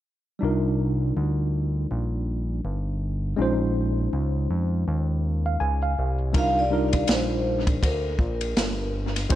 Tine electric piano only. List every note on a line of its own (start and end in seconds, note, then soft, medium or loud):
0.39 3.33 G3 medium
0.39 3.34 D4 medium
0.39 3.34 D#4 medium
0.43 3.35 F4 medium
0.43 3.35 A#4 medium
3.36 5.93 G#3 medium
3.36 5.93 C#4 medium
3.36 5.94 D#4 medium
3.41 5.95 F4 medium
3.41 5.95 C5 medium
5.46 5.60 F5 medium
5.60 5.81 G#5 medium
5.83 6.18 F5 medium
6.33 6.63 G3 medium
6.33 6.63 D4 medium
6.33 6.64 D#4 medium
6.33 6.64 F4 medium
6.33 6.64 A#4 medium
6.70 7.80 G3 medium
6.70 7.81 D4 medium
6.70 7.81 D#4 medium
6.70 7.81 F4 medium
6.70 7.82 A#4 medium
9.29 9.35 G#3 medium
9.29 9.35 C#4 medium
9.29 9.35 D#4 medium
9.29 9.35 F4 medium
9.29 9.35 C5 medium